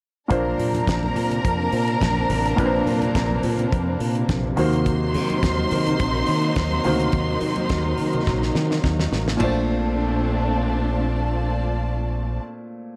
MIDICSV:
0, 0, Header, 1, 6, 480
1, 0, Start_track
1, 0, Key_signature, -2, "major"
1, 0, Tempo, 568182
1, 257, Time_signature, 4, 2, 24, 8
1, 10951, End_track
2, 0, Start_track
2, 0, Title_t, "Violin section"
2, 0, Program_c, 0, 48
2, 260, Note_on_c, 0, 70, 88
2, 263, Note_on_c, 0, 82, 86
2, 3593, Note_off_c, 0, 70, 0
2, 3594, Note_off_c, 0, 82, 0
2, 3871, Note_on_c, 0, 84, 113
2, 3875, Note_on_c, 0, 72, 90
2, 7436, Note_off_c, 0, 84, 0
2, 7438, Note_off_c, 0, 72, 0
2, 7942, Note_on_c, 0, 65, 73
2, 7942, Note_on_c, 0, 81, 87
2, 7944, Note_on_c, 0, 74, 80
2, 10459, Note_off_c, 0, 81, 0
2, 10460, Note_off_c, 0, 65, 0
2, 10461, Note_off_c, 0, 74, 0
2, 10951, End_track
3, 0, Start_track
3, 0, Title_t, "Grand piano"
3, 0, Program_c, 1, 0
3, 239, Note_on_c, 1, 46, 74
3, 248, Note_on_c, 1, 58, 65
3, 258, Note_on_c, 1, 62, 67
3, 263, Note_on_c, 1, 72, 88
3, 404, Control_c, 1, 64, 127
3, 2138, Note_off_c, 1, 46, 0
3, 2143, Note_off_c, 1, 58, 0
3, 2147, Note_off_c, 1, 62, 0
3, 2150, Note_off_c, 1, 72, 0
3, 2163, Note_on_c, 1, 46, 75
3, 2171, Note_on_c, 1, 58, 75
3, 2179, Note_on_c, 1, 62, 68
3, 2188, Note_on_c, 1, 71, 74
3, 2243, Note_off_c, 1, 71, 0
3, 2244, Note_on_c, 1, 72, 85
3, 3822, Note_off_c, 1, 46, 0
3, 3827, Note_off_c, 1, 58, 0
3, 3831, Note_off_c, 1, 62, 0
3, 3851, Note_on_c, 1, 51, 74
3, 3860, Note_on_c, 1, 58, 70
3, 3864, Note_off_c, 1, 72, 0
3, 3869, Note_on_c, 1, 66, 66
3, 3876, Control_c, 1, 64, 0
3, 3879, Note_on_c, 1, 72, 81
3, 3997, Control_c, 1, 64, 127
3, 5748, Note_off_c, 1, 51, 0
3, 5752, Note_off_c, 1, 58, 0
3, 5756, Note_off_c, 1, 66, 0
3, 5761, Note_off_c, 1, 72, 0
3, 5775, Note_on_c, 1, 51, 75
3, 5783, Note_on_c, 1, 58, 67
3, 5792, Note_on_c, 1, 66, 68
3, 5800, Note_on_c, 1, 72, 84
3, 7666, Note_off_c, 1, 51, 0
3, 7670, Note_off_c, 1, 58, 0
3, 7674, Note_off_c, 1, 66, 0
3, 7679, Note_off_c, 1, 72, 0
3, 7916, Note_on_c, 1, 46, 78
3, 7933, Note_on_c, 1, 57, 76
3, 7950, Note_on_c, 1, 62, 70
3, 7958, Control_c, 1, 64, 0
3, 7968, Note_on_c, 1, 72, 89
3, 8116, Control_c, 1, 64, 127
3, 10434, Note_off_c, 1, 46, 0
3, 10451, Note_off_c, 1, 57, 0
3, 10467, Note_off_c, 1, 62, 0
3, 10485, Note_off_c, 1, 72, 0
3, 10951, End_track
4, 0, Start_track
4, 0, Title_t, "String section"
4, 0, Program_c, 2, 48
4, 243, Note_on_c, 2, 62, 86
4, 246, Note_on_c, 2, 60, 74
4, 247, Note_on_c, 2, 58, 78
4, 250, Note_on_c, 2, 48, 82
4, 3825, Note_off_c, 2, 62, 0
4, 3826, Note_off_c, 2, 60, 0
4, 3827, Note_off_c, 2, 58, 0
4, 3864, Note_on_c, 2, 58, 77
4, 3867, Note_on_c, 2, 54, 74
4, 3867, Note_on_c, 2, 63, 86
4, 7908, Note_off_c, 2, 48, 0
4, 7911, Note_off_c, 2, 58, 0
4, 7913, Note_off_c, 2, 54, 0
4, 7913, Note_off_c, 2, 63, 0
4, 7951, Note_on_c, 2, 57, 73
4, 7951, Note_on_c, 2, 62, 91
4, 7952, Note_on_c, 2, 60, 77
4, 7953, Note_on_c, 2, 46, 82
4, 10469, Note_off_c, 2, 57, 0
4, 10469, Note_off_c, 2, 60, 0
4, 10469, Note_off_c, 2, 62, 0
4, 10470, Note_off_c, 2, 46, 0
4, 10951, End_track
5, 0, Start_track
5, 0, Title_t, "Fingered electric bass"
5, 0, Program_c, 3, 33
5, 258, Note_on_c, 3, 34, 81
5, 449, Note_off_c, 3, 34, 0
5, 501, Note_on_c, 3, 46, 81
5, 691, Note_off_c, 3, 46, 0
5, 738, Note_on_c, 3, 34, 102
5, 929, Note_off_c, 3, 34, 0
5, 979, Note_on_c, 3, 46, 91
5, 1170, Note_off_c, 3, 46, 0
5, 1224, Note_on_c, 3, 41, 83
5, 1413, Note_off_c, 3, 41, 0
5, 1459, Note_on_c, 3, 46, 84
5, 1650, Note_off_c, 3, 46, 0
5, 1701, Note_on_c, 3, 34, 77
5, 1892, Note_off_c, 3, 34, 0
5, 1941, Note_on_c, 3, 33, 90
5, 2132, Note_off_c, 3, 33, 0
5, 2181, Note_on_c, 3, 34, 103
5, 2373, Note_off_c, 3, 34, 0
5, 2419, Note_on_c, 3, 46, 99
5, 2612, Note_off_c, 3, 46, 0
5, 2664, Note_on_c, 3, 34, 97
5, 2855, Note_off_c, 3, 34, 0
5, 2905, Note_on_c, 3, 46, 94
5, 3096, Note_off_c, 3, 46, 0
5, 3146, Note_on_c, 3, 41, 86
5, 3336, Note_off_c, 3, 41, 0
5, 3385, Note_on_c, 3, 46, 92
5, 3576, Note_off_c, 3, 46, 0
5, 3625, Note_on_c, 3, 34, 93
5, 3817, Note_off_c, 3, 34, 0
5, 3870, Note_on_c, 3, 39, 92
5, 4349, Note_on_c, 3, 51, 87
5, 4361, Note_off_c, 3, 39, 0
5, 4539, Note_off_c, 3, 51, 0
5, 4587, Note_on_c, 3, 39, 103
5, 4778, Note_off_c, 3, 39, 0
5, 4831, Note_on_c, 3, 51, 100
5, 5021, Note_off_c, 3, 51, 0
5, 5070, Note_on_c, 3, 34, 85
5, 5260, Note_off_c, 3, 34, 0
5, 5310, Note_on_c, 3, 51, 90
5, 5500, Note_off_c, 3, 51, 0
5, 5544, Note_on_c, 3, 39, 92
5, 5737, Note_off_c, 3, 39, 0
5, 5791, Note_on_c, 3, 38, 80
5, 5981, Note_off_c, 3, 38, 0
5, 6022, Note_on_c, 3, 39, 115
5, 6216, Note_off_c, 3, 39, 0
5, 6265, Note_on_c, 3, 51, 100
5, 6458, Note_off_c, 3, 51, 0
5, 6504, Note_on_c, 3, 39, 106
5, 6697, Note_off_c, 3, 39, 0
5, 6745, Note_on_c, 3, 51, 93
5, 6937, Note_off_c, 3, 51, 0
5, 6989, Note_on_c, 3, 34, 88
5, 7179, Note_off_c, 3, 34, 0
5, 7223, Note_on_c, 3, 51, 99
5, 7415, Note_off_c, 3, 51, 0
5, 7467, Note_on_c, 3, 39, 88
5, 7658, Note_off_c, 3, 39, 0
5, 7705, Note_on_c, 3, 33, 91
5, 7896, Note_off_c, 3, 33, 0
5, 7944, Note_on_c, 3, 34, 98
5, 10462, Note_off_c, 3, 34, 0
5, 10951, End_track
6, 0, Start_track
6, 0, Title_t, "Drums"
6, 254, Note_on_c, 9, 62, 28
6, 257, Note_on_c, 9, 42, 69
6, 259, Note_on_c, 9, 36, 107
6, 339, Note_off_c, 9, 62, 0
6, 342, Note_off_c, 9, 42, 0
6, 343, Note_off_c, 9, 36, 0
6, 379, Note_on_c, 9, 62, 33
6, 464, Note_off_c, 9, 62, 0
6, 490, Note_on_c, 9, 63, 64
6, 502, Note_on_c, 9, 46, 58
6, 574, Note_off_c, 9, 63, 0
6, 586, Note_off_c, 9, 46, 0
6, 624, Note_on_c, 9, 63, 84
6, 630, Note_on_c, 9, 42, 49
6, 709, Note_off_c, 9, 63, 0
6, 715, Note_off_c, 9, 42, 0
6, 731, Note_on_c, 9, 62, 34
6, 739, Note_on_c, 9, 36, 85
6, 744, Note_on_c, 9, 42, 57
6, 752, Note_on_c, 9, 38, 108
6, 815, Note_off_c, 9, 62, 0
6, 823, Note_off_c, 9, 36, 0
6, 828, Note_off_c, 9, 42, 0
6, 836, Note_off_c, 9, 38, 0
6, 867, Note_on_c, 9, 62, 36
6, 867, Note_on_c, 9, 63, 75
6, 951, Note_off_c, 9, 62, 0
6, 951, Note_off_c, 9, 63, 0
6, 974, Note_on_c, 9, 64, 76
6, 981, Note_on_c, 9, 46, 60
6, 1058, Note_off_c, 9, 64, 0
6, 1065, Note_off_c, 9, 46, 0
6, 1102, Note_on_c, 9, 64, 66
6, 1111, Note_on_c, 9, 42, 45
6, 1186, Note_off_c, 9, 64, 0
6, 1195, Note_off_c, 9, 42, 0
6, 1217, Note_on_c, 9, 62, 29
6, 1223, Note_on_c, 9, 36, 106
6, 1225, Note_on_c, 9, 42, 65
6, 1302, Note_off_c, 9, 62, 0
6, 1307, Note_off_c, 9, 36, 0
6, 1309, Note_off_c, 9, 42, 0
6, 1345, Note_on_c, 9, 62, 28
6, 1430, Note_off_c, 9, 62, 0
6, 1455, Note_on_c, 9, 46, 57
6, 1540, Note_off_c, 9, 46, 0
6, 1585, Note_on_c, 9, 42, 41
6, 1670, Note_off_c, 9, 42, 0
6, 1695, Note_on_c, 9, 62, 33
6, 1695, Note_on_c, 9, 63, 80
6, 1702, Note_on_c, 9, 36, 89
6, 1705, Note_on_c, 9, 42, 57
6, 1712, Note_on_c, 9, 38, 98
6, 1779, Note_off_c, 9, 62, 0
6, 1779, Note_off_c, 9, 63, 0
6, 1786, Note_off_c, 9, 36, 0
6, 1790, Note_off_c, 9, 42, 0
6, 1796, Note_off_c, 9, 38, 0
6, 1830, Note_on_c, 9, 63, 79
6, 1914, Note_off_c, 9, 63, 0
6, 1941, Note_on_c, 9, 46, 66
6, 1943, Note_on_c, 9, 64, 74
6, 2026, Note_off_c, 9, 46, 0
6, 2027, Note_off_c, 9, 64, 0
6, 2075, Note_on_c, 9, 42, 42
6, 2159, Note_off_c, 9, 42, 0
6, 2177, Note_on_c, 9, 62, 30
6, 2183, Note_on_c, 9, 36, 107
6, 2183, Note_on_c, 9, 42, 65
6, 2262, Note_off_c, 9, 62, 0
6, 2267, Note_off_c, 9, 36, 0
6, 2268, Note_off_c, 9, 42, 0
6, 2413, Note_on_c, 9, 63, 71
6, 2426, Note_on_c, 9, 46, 55
6, 2498, Note_off_c, 9, 63, 0
6, 2511, Note_off_c, 9, 46, 0
6, 2549, Note_on_c, 9, 63, 84
6, 2550, Note_on_c, 9, 42, 48
6, 2633, Note_off_c, 9, 63, 0
6, 2634, Note_off_c, 9, 42, 0
6, 2660, Note_on_c, 9, 62, 33
6, 2662, Note_on_c, 9, 36, 103
6, 2663, Note_on_c, 9, 42, 56
6, 2671, Note_on_c, 9, 38, 94
6, 2745, Note_off_c, 9, 62, 0
6, 2746, Note_off_c, 9, 36, 0
6, 2747, Note_off_c, 9, 42, 0
6, 2755, Note_off_c, 9, 38, 0
6, 2788, Note_on_c, 9, 63, 78
6, 2872, Note_off_c, 9, 63, 0
6, 2899, Note_on_c, 9, 46, 65
6, 2904, Note_on_c, 9, 64, 74
6, 2983, Note_off_c, 9, 46, 0
6, 2988, Note_off_c, 9, 64, 0
6, 3020, Note_on_c, 9, 64, 68
6, 3033, Note_on_c, 9, 42, 40
6, 3104, Note_off_c, 9, 64, 0
6, 3118, Note_off_c, 9, 42, 0
6, 3139, Note_on_c, 9, 62, 34
6, 3147, Note_on_c, 9, 36, 94
6, 3147, Note_on_c, 9, 42, 59
6, 3224, Note_off_c, 9, 62, 0
6, 3231, Note_off_c, 9, 36, 0
6, 3232, Note_off_c, 9, 42, 0
6, 3269, Note_on_c, 9, 62, 31
6, 3353, Note_off_c, 9, 62, 0
6, 3382, Note_on_c, 9, 46, 63
6, 3466, Note_off_c, 9, 46, 0
6, 3507, Note_on_c, 9, 42, 41
6, 3592, Note_off_c, 9, 42, 0
6, 3621, Note_on_c, 9, 62, 38
6, 3621, Note_on_c, 9, 63, 75
6, 3624, Note_on_c, 9, 42, 59
6, 3625, Note_on_c, 9, 36, 107
6, 3631, Note_on_c, 9, 38, 92
6, 3705, Note_off_c, 9, 62, 0
6, 3705, Note_off_c, 9, 63, 0
6, 3709, Note_off_c, 9, 42, 0
6, 3710, Note_off_c, 9, 36, 0
6, 3715, Note_off_c, 9, 38, 0
6, 3751, Note_on_c, 9, 62, 34
6, 3751, Note_on_c, 9, 63, 80
6, 3836, Note_off_c, 9, 62, 0
6, 3836, Note_off_c, 9, 63, 0
6, 3861, Note_on_c, 9, 46, 65
6, 3870, Note_on_c, 9, 64, 72
6, 3945, Note_off_c, 9, 46, 0
6, 3954, Note_off_c, 9, 64, 0
6, 3998, Note_on_c, 9, 42, 47
6, 4082, Note_off_c, 9, 42, 0
6, 4105, Note_on_c, 9, 42, 67
6, 4107, Note_on_c, 9, 36, 104
6, 4109, Note_on_c, 9, 62, 33
6, 4189, Note_off_c, 9, 42, 0
6, 4191, Note_off_c, 9, 36, 0
6, 4194, Note_off_c, 9, 62, 0
6, 4345, Note_on_c, 9, 46, 60
6, 4352, Note_on_c, 9, 63, 71
6, 4430, Note_off_c, 9, 46, 0
6, 4436, Note_off_c, 9, 63, 0
6, 4475, Note_on_c, 9, 42, 50
6, 4481, Note_on_c, 9, 63, 77
6, 4560, Note_off_c, 9, 42, 0
6, 4566, Note_off_c, 9, 63, 0
6, 4586, Note_on_c, 9, 36, 95
6, 4587, Note_on_c, 9, 42, 62
6, 4595, Note_on_c, 9, 38, 105
6, 4670, Note_off_c, 9, 36, 0
6, 4672, Note_off_c, 9, 42, 0
6, 4680, Note_off_c, 9, 38, 0
6, 4720, Note_on_c, 9, 62, 37
6, 4720, Note_on_c, 9, 63, 84
6, 4804, Note_off_c, 9, 62, 0
6, 4804, Note_off_c, 9, 63, 0
6, 4822, Note_on_c, 9, 46, 63
6, 4833, Note_on_c, 9, 64, 74
6, 4907, Note_off_c, 9, 46, 0
6, 4918, Note_off_c, 9, 64, 0
6, 4955, Note_on_c, 9, 42, 43
6, 4963, Note_on_c, 9, 64, 65
6, 5039, Note_off_c, 9, 42, 0
6, 5048, Note_off_c, 9, 64, 0
6, 5066, Note_on_c, 9, 42, 58
6, 5068, Note_on_c, 9, 36, 102
6, 5150, Note_off_c, 9, 42, 0
6, 5152, Note_off_c, 9, 36, 0
6, 5203, Note_on_c, 9, 62, 27
6, 5288, Note_off_c, 9, 62, 0
6, 5292, Note_on_c, 9, 46, 64
6, 5377, Note_off_c, 9, 46, 0
6, 5422, Note_on_c, 9, 42, 45
6, 5506, Note_off_c, 9, 42, 0
6, 5541, Note_on_c, 9, 42, 57
6, 5545, Note_on_c, 9, 36, 98
6, 5547, Note_on_c, 9, 38, 103
6, 5551, Note_on_c, 9, 62, 34
6, 5551, Note_on_c, 9, 63, 72
6, 5625, Note_off_c, 9, 42, 0
6, 5629, Note_off_c, 9, 36, 0
6, 5632, Note_off_c, 9, 38, 0
6, 5635, Note_off_c, 9, 62, 0
6, 5635, Note_off_c, 9, 63, 0
6, 5678, Note_on_c, 9, 62, 40
6, 5678, Note_on_c, 9, 63, 81
6, 5763, Note_off_c, 9, 62, 0
6, 5763, Note_off_c, 9, 63, 0
6, 5779, Note_on_c, 9, 46, 68
6, 5790, Note_on_c, 9, 64, 72
6, 5864, Note_off_c, 9, 46, 0
6, 5874, Note_off_c, 9, 64, 0
6, 5910, Note_on_c, 9, 42, 44
6, 5994, Note_off_c, 9, 42, 0
6, 6017, Note_on_c, 9, 42, 59
6, 6024, Note_on_c, 9, 36, 106
6, 6028, Note_on_c, 9, 62, 31
6, 6102, Note_off_c, 9, 42, 0
6, 6109, Note_off_c, 9, 36, 0
6, 6112, Note_off_c, 9, 62, 0
6, 6258, Note_on_c, 9, 46, 54
6, 6268, Note_on_c, 9, 63, 60
6, 6343, Note_off_c, 9, 46, 0
6, 6353, Note_off_c, 9, 63, 0
6, 6385, Note_on_c, 9, 42, 50
6, 6395, Note_on_c, 9, 63, 84
6, 6469, Note_off_c, 9, 42, 0
6, 6480, Note_off_c, 9, 63, 0
6, 6500, Note_on_c, 9, 42, 57
6, 6505, Note_on_c, 9, 36, 98
6, 6508, Note_on_c, 9, 38, 95
6, 6584, Note_off_c, 9, 42, 0
6, 6589, Note_off_c, 9, 36, 0
6, 6592, Note_off_c, 9, 38, 0
6, 6640, Note_on_c, 9, 62, 37
6, 6640, Note_on_c, 9, 63, 82
6, 6725, Note_off_c, 9, 62, 0
6, 6725, Note_off_c, 9, 63, 0
6, 6738, Note_on_c, 9, 46, 63
6, 6754, Note_on_c, 9, 64, 66
6, 6822, Note_off_c, 9, 46, 0
6, 6838, Note_off_c, 9, 64, 0
6, 6869, Note_on_c, 9, 42, 39
6, 6881, Note_on_c, 9, 64, 72
6, 6954, Note_off_c, 9, 42, 0
6, 6965, Note_off_c, 9, 64, 0
6, 6988, Note_on_c, 9, 36, 100
6, 6989, Note_on_c, 9, 38, 50
6, 7072, Note_off_c, 9, 36, 0
6, 7074, Note_off_c, 9, 38, 0
6, 7117, Note_on_c, 9, 38, 42
6, 7201, Note_off_c, 9, 38, 0
6, 7226, Note_on_c, 9, 38, 72
6, 7311, Note_off_c, 9, 38, 0
6, 7358, Note_on_c, 9, 38, 63
6, 7443, Note_off_c, 9, 38, 0
6, 7466, Note_on_c, 9, 36, 95
6, 7472, Note_on_c, 9, 62, 35
6, 7472, Note_on_c, 9, 63, 74
6, 7473, Note_on_c, 9, 38, 77
6, 7551, Note_off_c, 9, 36, 0
6, 7557, Note_off_c, 9, 38, 0
6, 7557, Note_off_c, 9, 62, 0
6, 7557, Note_off_c, 9, 63, 0
6, 7594, Note_on_c, 9, 62, 36
6, 7594, Note_on_c, 9, 63, 75
6, 7599, Note_on_c, 9, 38, 78
6, 7678, Note_off_c, 9, 62, 0
6, 7678, Note_off_c, 9, 63, 0
6, 7684, Note_off_c, 9, 38, 0
6, 7704, Note_on_c, 9, 64, 73
6, 7710, Note_on_c, 9, 38, 84
6, 7789, Note_off_c, 9, 64, 0
6, 7794, Note_off_c, 9, 38, 0
6, 7838, Note_on_c, 9, 38, 95
6, 7922, Note_off_c, 9, 38, 0
6, 7941, Note_on_c, 9, 43, 92
6, 7941, Note_on_c, 9, 53, 75
6, 7945, Note_on_c, 9, 36, 91
6, 7949, Note_on_c, 9, 63, 59
6, 8025, Note_off_c, 9, 43, 0
6, 8025, Note_off_c, 9, 53, 0
6, 8030, Note_off_c, 9, 36, 0
6, 8033, Note_off_c, 9, 63, 0
6, 10951, End_track
0, 0, End_of_file